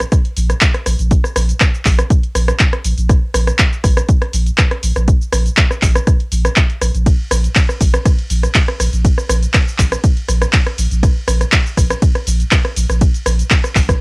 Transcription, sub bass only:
0.37 A#1
0.86 A#1
0.99 A#1
1.36 A#1
1.86 A#1
2.35 A#1
2.85 A#1
2.98 A#1
3.34 A#1
3.84 A#1
4.34 A#1
4.83 A#1
4.96 A#1
5.33 A#1
5.82 A#1
6.32 A#1
6.82 A#1
6.95 A#1
7.31 A#1
7.81 A#1
8.30 A#1
8.80 A#1
8.93 A#1
9.29 A#1
9.79 A#1
10.29 A#1
10.78 A#1
10.91 A#1
11.28 A#1
11.77 A#1
12.27 A#1
12.77 A#1
12.90 A#1
13.26 A#1
13.76 A#1

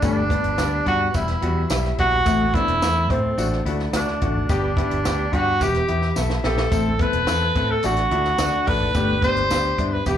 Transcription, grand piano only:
0.02 G3 B3 D4
0.30 G3 B3 D4
0.58 G3 B3 D4
0.87 G3 B3 D4
1.15 G3 B3 E4
1.43 G3 B3 F#4
1.71 G3 B3 E4
1.99 G3 B3 E4
2.26 A3 C4 E4
2.55 A3 C4 D4
2.82 A3 C4 E4
3.10 A3 C4 E4
3.38 A3 D4 F#4
3.66 A3 D4 F#4
3.94 A3 D4 F#4
4.22 A3 D4 F#4
4.49 B3 D4 G4
4.78 B3 D4 G4
5.06 B3 D4 G4
5.33 B3 D4 G4
5.61 B3 E4 G4
5.89 B3 E4 G4
6.16 B3 E4 A4
6.44 B3 E4 G4
6.71 C4 E4 A4
7.00 C4 E4 A4
7.28 C4 E4 A4
7.56 C4 E4 A4
7.84 A3 D4 F#4
8.11 A3 D4 F#4
8.39 A3 D4 F#4
8.67 A3 D4 A4
8.95 B3 D4 G4
9.23 B3 D4 G4
9.51 B3 D4 G4
9.78 B3 D4 E4
10.06 B3 E4 G4

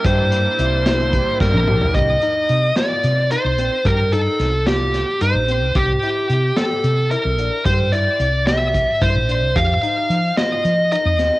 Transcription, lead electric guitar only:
0.06 C5
1.41 A#4
1.95 D#5
2.77 D5
3.32 C5
3.86 A#4
4.13 A4
4.67 G4
5.22 C5
5.76 G4
6.57 A4
7.11 A#4
7.66 C5
7.92 D5
8.47 E5
9.02 C5
9.56 F5
10.38 D#5
10.92 D#5

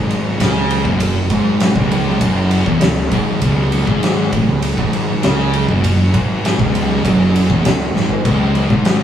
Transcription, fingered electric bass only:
Already playing: G#1
0.38 C#2
0.85 F#1
1.30 G#1
1.76 C#1
2.21 F#1
2.66 E1
2.82 C#1
3.12 G#1
3.42 C#1
3.87 G#1
4.33 A1
4.48 C#1
4.78 G#1
5.22 C#2
5.68 F#1
6.14 G#1
6.59 C#1
7.04 F#1
7.50 E1
7.64 C#1
7.94 G#1
8.25 C#1
8.70 G#1

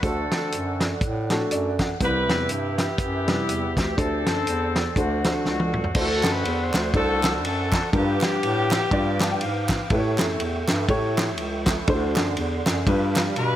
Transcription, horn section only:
0.03 C4 F#4 A4
2.02 E4 G4 B4
2.52 G4
2.79 B3 E4 G4
3.79 G4
3.98 C4 A4
4.76 A4
4.97 A3 C4 F#4
5.47 A3 C4 F#4
5.98 C4 F#4 A4
6.30 B4
6.64 C5
6.96 C4 F#4 A4
7.46 C4 F#4 A4
7.96 B3 D4 G4
13.38 D4 F4 B4

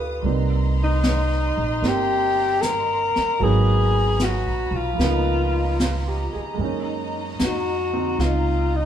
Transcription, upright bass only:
Already playing: D2
0.24 C2
1.57 A#1
1.82 G1
3.17 muted upright bass stroke
3.40 G#1
4.46 A#1
4.71 B1
4.98 C#2
6.35 muted upright bass stroke
6.58 F#2
7.40 F2
8.19 C#2

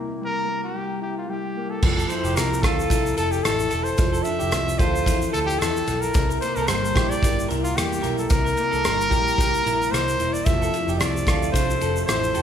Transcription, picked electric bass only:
1.83 F1
2.24 F1
2.37 C2
2.63 D2
2.90 C2
3.18 F1
3.45 A1
3.73 E1
3.99 F1
4.41 F1
4.53 C2
4.80 D2
5.06 E2
5.34 D2
5.61 E2
5.88 B1
6.15 C2
6.57 C2
6.69 G1
6.95 A#1
7.23 G1
7.50 C2
7.77 E2
8.04 B1
8.31 C2
8.74 C2
8.85 G1
9.11 A#1
9.38 C2
9.66 A#1
9.93 C2
10.20 E1
10.46 F1
10.88 F1
11.00 C2
11.27 D2
11.53 C2
11.82 F1
12.08 A1
12.36 E1

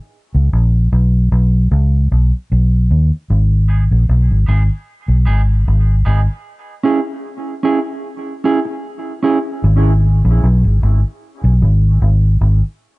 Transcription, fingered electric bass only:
0.35 C#2
0.53 A#1
0.92 B1
1.32 B1
1.71 C#2
2.12 B1
2.52 B1
2.91 D#2
3.30 G#1
3.91 A#1
4.09 B1
4.31 G#1
4.48 G#1
5.08 B1
5.28 G#1
5.68 G#1
6.06 G#1
9.64 G#1
10.25 A#1
10.44 B1
10.64 G#1
10.83 G#1
11.44 B1
11.62 G#1
12.02 G#1
12.41 G#1

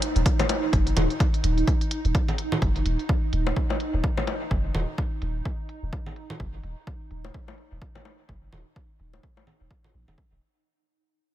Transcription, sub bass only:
0.16 D#1
0.73 F#1
0.97 D#1
1.44 D#1
2.05 D#1
2.62 F#1
2.86 D#1
3.33 D#1
3.94 D#1
4.51 F#1
4.75 D#1
5.22 D#1
5.83 D#1
6.40 F#1
6.63 D#1
7.11 D#1
7.72 D#1
8.29 F#1
8.52 D#1
9.00 D#1
9.61 D#1
9.94 A#1
10.08 D#1
10.32 D#1

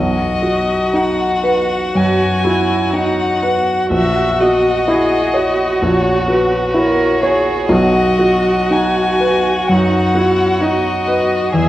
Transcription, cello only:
1.94 F#4
2.44 E4
2.92 D#4
3.43 F#4
4.89 G#4
5.36 F#4
6.78 A#4
7.24 G#4
7.71 F#4
9.71 D#4
10.17 E4
10.62 F#4
11.55 G#4

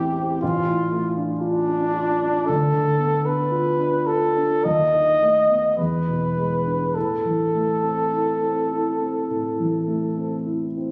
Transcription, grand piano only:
Already playing: A1 E2 A3 C4 E4
0.18 C4
0.43 A1
0.67 A2
0.92 A3
1.17 D4
1.41 F4
1.67 D4
1.94 F4
2.21 D4
2.49 D2
2.74 D3
2.99 B3
3.25 D4
3.51 F4
3.78 D4
4.07 F4
4.36 D4
4.65 D#2
4.94 D#3
5.22 A3
5.50 B3
5.78 E2
6.07 B2
6.37 G#3
6.66 D4
6.95 A2
7.25 E3
7.55 A3
7.83 C4
8.14 E4
8.42 C4
8.73 E4
9.01 C4
9.30 A2
9.60 E3
9.88 A3
10.18 C4
10.46 E4
10.77 C4

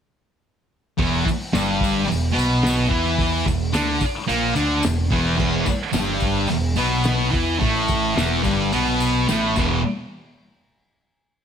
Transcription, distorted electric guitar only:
0.98 E2 E3
1.26 muted distorted electric guitar stroke
1.53 G2 G3
2.06 E2
2.33 B2 B3
2.89 E3 E4
3.46 E2
3.72 D3 D4
4.27 A#2 A#3
4.55 D3 D4
4.83 E2
5.11 E2 E3
5.37 E2 E3
5.67 muted distorted electric guitar stroke
5.93 G2 G3
6.49 E2
6.77 B2 B3
7.31 E3 E4
7.59 A2 A3
8.15 E2 E3
8.43 G2 G3
8.72 B2 B3
9.28 A2 A3
9.57 E2 B2 E3

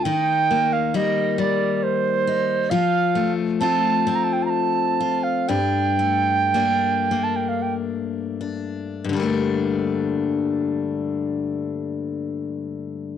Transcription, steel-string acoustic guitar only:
Already playing: A3 D4
0.05 D#3 D#4
0.51 A#3
0.94 G3 A#3 D#4
1.38 G3
2.27 D#4
2.71 F3 F4
3.15 A3
3.61 A3 C4 F4
4.07 C4
5.00 F4
5.49 G2 D4
5.99 A3
6.54 A3 A#3 D4
7.11 A#3
8.41 D4
9.04 G2
9.09 D3 G3
9.17 A3 A#3
9.23 D4

